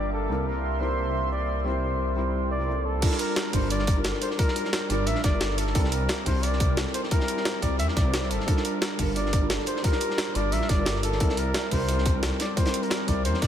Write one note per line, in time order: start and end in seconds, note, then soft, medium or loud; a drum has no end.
0.00 0.28 G1 medium
0.00 0.28 G3 medium
0.00 2.99 A#3 medium
0.00 0.32 D4 medium
0.00 0.32 F4 medium
0.00 0.31 A#4 loud
0.00 0.12 D5 loud
0.00 0.27 F5 medium
0.00 2.98 G5 medium
0.00 0.27 D6 medium
0.13 0.49 A4 medium
0.28 3.01 C2 medium
0.28 0.78 G3 medium
0.28 0.79 C4 medium
0.28 0.79 E4 medium
0.28 0.80 A#4 loud
0.28 3.00 E5 medium
0.28 3.00 C6 medium
0.47 0.83 A#4 medium
0.79 1.63 G3 medium
0.79 1.64 C4 medium
0.79 1.64 E4 medium
0.79 1.65 A#4 loud
0.79 1.32 C5 loud
1.32 1.68 D5 medium
1.64 2.14 G3 medium
1.64 2.15 C4 medium
1.64 2.15 E4 medium
1.64 2.16 A#4 loud
1.64 2.51 C5 medium
2.15 2.57 G3 medium
2.15 2.58 C4 medium
2.15 2.58 E4 medium
2.15 2.59 A#4 loud
2.51 2.87 D5 loud
2.59 2.66 G3 medium
2.59 2.66 C4 medium
2.59 2.66 E4 medium
2.59 2.67 A#4 medium
2.67 2.99 G3 medium
2.67 3.00 C4 medium
2.67 3.01 E4 medium
2.67 3.01 A4 medium
2.85 3.19 A4 loud
3.01 3.50 G3 loud
3.01 3.51 D4 medium
3.01 3.52 F4 medium
3.01 3.52 A#4 loud
3.01 kick loud
3.01 closed hi-hat medium
3.01 crash loud
3.11 snare medium
3.19 3.55 A#4 loud
3.19 closed hi-hat loud
3.19 closed hi-hat medium
3.36 snare loud
3.36 closed hi-hat medium
3.52 4.03 G1 loud
3.52 3.94 G3 loud
3.52 3.94 D4 medium
3.52 3.95 F4 medium
3.52 3.95 A#4 loud
3.52 3.70 C5 loud
3.52 kick medium
3.52 closed hi-hat loud
3.52 open hi-hat medium
3.70 4.03 D5 loud
3.70 closed hi-hat medium
3.79 snare soft
3.87 kick loud
3.87 closed hi-hat loud
3.87 closed hi-hat medium
3.96 4.02 G3 medium
3.96 4.02 D4 medium
3.96 4.03 F4 medium
3.96 4.03 A#4 loud
4.04 4.12 G1 medium
4.04 4.36 G3 medium
4.04 4.37 D4 medium
4.04 4.37 F4 medium
4.04 4.37 A4 medium
4.04 snare loud
4.04 closed hi-hat medium
4.14 snare soft
4.22 4.29 C5 loud
4.22 closed hi-hat medium
4.30 snare soft
4.37 4.87 G3 loud
4.37 4.88 D4 medium
4.37 4.88 F4 medium
4.37 4.92 A#4 loud
4.37 4.89 A#4 loud
4.37 kick loud
4.37 closed hi-hat medium
4.48 snare medium
4.56 closed hi-hat medium
4.56 closed hi-hat loud
4.64 snare soft
4.73 snare loud
4.73 closed hi-hat medium
4.88 5.09 G1 loud
4.88 5.30 G3 loud
4.88 5.31 D4 medium
4.88 5.31 F4 medium
4.88 5.32 A#4 loud
4.88 5.08 D5 loud
4.88 closed hi-hat loud
4.88 closed hi-hat medium
5.07 5.15 A#1 loud
5.07 5.24 E5 loud
5.07 closed hi-hat medium
5.15 snare soft
5.24 5.39 G1 medium
5.24 5.60 D5 loud
5.24 kick loud
5.24 snare medium
5.24 closed hi-hat medium
5.24 closed hi-hat loud
5.32 5.38 G3 medium
5.32 5.39 D4 medium
5.32 5.39 F4 medium
5.32 5.39 A#4 loud
5.40 5.74 G1 loud
5.40 5.72 G3 medium
5.40 5.73 D4 medium
5.40 5.74 A4 medium
5.40 snare loud
5.40 closed hi-hat medium
5.50 snare soft
5.58 5.93 A4 loud
5.58 closed hi-hat loud
5.58 closed hi-hat medium
5.66 snare soft
5.73 6.08 C2 medium
5.73 6.23 G3 medium
5.73 6.24 C4 medium
5.73 6.25 E4 medium
5.73 6.25 A#4 loud
5.73 kick loud
5.73 closed hi-hat medium
5.84 snare medium
5.92 6.26 A#4 loud
5.92 closed hi-hat medium
5.92 closed hi-hat loud
6.09 snare loud
6.09 closed hi-hat medium
6.24 6.76 C2 loud
6.24 6.66 G3 loud
6.24 6.67 C4 medium
6.24 6.68 E4 medium
6.24 6.68 A#4 loud
6.24 6.45 C5 loud
6.24 kick medium
6.24 closed hi-hat loud
6.24 open hi-hat medium
6.43 6.77 D5 loud
6.43 closed hi-hat medium
6.52 snare soft
6.60 kick loud
6.60 closed hi-hat loud
6.60 closed hi-hat medium
6.68 6.75 G3 medium
6.68 6.75 C4 medium
6.68 6.75 E4 medium
6.68 6.76 A#4 loud
6.76 6.85 C2 loud
6.76 7.08 G3 medium
6.76 7.09 C4 medium
6.76 7.10 E4 medium
6.76 7.10 A4 medium
6.76 snare loud
6.76 closed hi-hat medium
6.87 snare soft
6.94 7.02 C5 loud
6.94 closed hi-hat loud
6.94 closed hi-hat medium
7.03 snare soft
7.10 7.59 G3 loud
7.10 7.60 C4 medium
7.10 7.61 E4 medium
7.10 7.59 A#4 loud
7.10 7.62 A#4 loud
7.10 kick loud
7.10 closed hi-hat medium
7.20 snare medium
7.28 closed hi-hat medium
7.37 snare soft
7.45 snare loud
7.45 closed hi-hat medium
7.61 7.81 C2 loud
7.61 8.02 G3 loud
7.61 8.03 C4 medium
7.61 8.04 E4 medium
7.61 8.04 A#4 loud
7.61 7.78 D5 loud
7.61 kick medium
7.61 closed hi-hat medium
7.79 7.87 E2 loud
7.79 7.87 E5 loud
7.79 closed hi-hat medium
7.88 snare soft
7.96 8.32 C2 medium
7.96 8.32 D5 loud
7.96 kick loud
7.96 snare soft
7.96 closed hi-hat medium
8.04 8.44 G3 medium
8.04 8.45 C4 medium
8.04 8.46 E4 medium
8.04 8.47 C5 medium
8.14 snare loud
8.14 closed hi-hat medium
8.23 snare soft
8.31 8.38 G1 medium
8.31 8.66 A4 loud
8.31 closed hi-hat medium
8.40 snare soft
8.46 8.96 G3 loud
8.46 8.97 D4 medium
8.46 8.97 F4 medium
8.46 8.98 A#4 loud
8.46 kick loud
8.46 closed hi-hat medium
8.57 snare medium
8.65 8.81 A#4 loud
8.65 closed hi-hat medium
8.82 8.98 A#4 loud
8.82 snare loud
8.82 closed hi-hat medium
8.97 9.49 G1 loud
8.97 9.39 G3 loud
8.97 9.40 D4 medium
8.97 9.40 F4 medium
8.97 9.41 A#4 loud
8.97 kick medium
8.97 closed hi-hat medium
8.97 open hi-hat medium
9.16 9.48 D5 loud
9.16 closed hi-hat medium
9.26 snare soft
9.33 kick loud
9.33 closed hi-hat medium
9.41 9.48 G3 medium
9.41 9.48 D4 medium
9.41 9.48 F4 medium
9.41 9.48 A#4 loud
9.49 9.58 G1 loud
9.49 9.81 G3 medium
9.49 9.82 D4 medium
9.49 9.82 F4 medium
9.49 9.83 A4 medium
9.49 snare loud
9.49 closed hi-hat medium
9.59 snare soft
9.66 9.83 C5 loud
9.66 closed hi-hat medium
9.76 snare medium
9.83 10.32 G3 medium
9.83 10.33 D4 medium
9.83 10.34 F4 medium
9.83 10.37 A#4 loud
9.83 10.34 A#4 loud
9.83 kick loud
9.83 closed hi-hat medium
9.92 snare medium
10.00 closed hi-hat medium
10.10 snare medium
10.18 snare loud
10.18 closed hi-hat medium
10.34 10.54 G1 loud
10.34 10.76 G3 loud
10.34 10.76 D4 medium
10.34 10.77 F4 medium
10.34 10.77 A#4 loud
10.34 10.54 D5 loud
10.34 closed hi-hat medium
10.52 10.60 A#1 loud
10.52 10.71 E5 loud
10.52 closed hi-hat medium
10.61 snare soft
10.69 10.85 G1 medium
10.69 11.03 D5 loud
10.69 kick loud
10.69 snare soft
10.69 closed hi-hat medium
10.77 10.84 G3 medium
10.77 10.84 D4 medium
10.77 10.85 F4 medium
10.77 10.85 A#4 loud
10.86 11.22 G1 loud
10.86 11.17 G3 medium
10.86 11.19 F4 medium
10.86 11.19 A4 medium
10.86 snare loud
10.86 closed hi-hat medium
10.86 closed hi-hat loud
10.95 snare soft
11.03 11.39 A4 loud
11.03 closed hi-hat medium
11.12 snare soft
11.19 11.53 C2 medium
11.19 11.69 G3 loud
11.19 11.69 C4 medium
11.19 11.70 E4 medium
11.19 11.71 A#4 loud
11.19 kick loud
11.19 closed hi-hat medium
11.29 snare medium
11.37 11.73 A#4 loud
11.37 closed hi-hat medium
11.54 snare loud
11.54 closed hi-hat medium
11.70 12.22 C2 loud
11.70 12.12 G3 loud
11.70 12.12 C4 loud
11.70 12.13 E4 medium
11.70 12.14 A#4 loud
11.70 12.23 C5 loud
11.70 kick medium
11.70 closed hi-hat medium
11.70 open hi-hat medium
11.89 closed hi-hat medium
11.98 snare soft
12.06 kick loud
12.06 closed hi-hat medium
12.14 12.20 G3 medium
12.14 12.21 C4 medium
12.14 12.21 E4 medium
12.14 12.21 A#4 loud
12.22 12.31 C2 loud
12.22 12.54 G3 medium
12.22 12.55 C4 medium
12.22 12.55 E4 medium
12.22 12.55 A4 medium
12.22 snare loud
12.22 closed hi-hat medium
12.31 snare soft
12.40 12.58 D5 loud
12.40 snare loud
12.40 closed hi-hat medium
12.55 13.05 G3 medium
12.55 13.06 C4 medium
12.55 13.06 E4 medium
12.55 13.07 A#4 loud
12.55 12.84 C5 loud
12.55 kick loud
12.55 closed hi-hat medium
12.66 snare loud
12.66 closed hi-hat medium
12.74 closed hi-hat loud
12.83 13.10 A#4 medium
12.83 closed hi-hat medium
12.90 snare loud
12.90 closed hi-hat medium
13.06 13.27 C2 loud
13.06 13.47 G3 loud
13.06 13.47 C4 medium
13.06 13.47 E4 medium
13.06 13.47 A#4 loud
13.06 13.24 D5 loud
13.06 kick medium
13.06 closed hi-hat loud
13.06 closed hi-hat medium
13.25 13.33 E2 medium
13.25 13.43 C5 loud
13.25 closed hi-hat medium
13.34 snare soft
13.42 13.47 D5 loud
13.42 kick loud
13.42 snare medium
13.42 closed hi-hat loud
13.42 closed hi-hat medium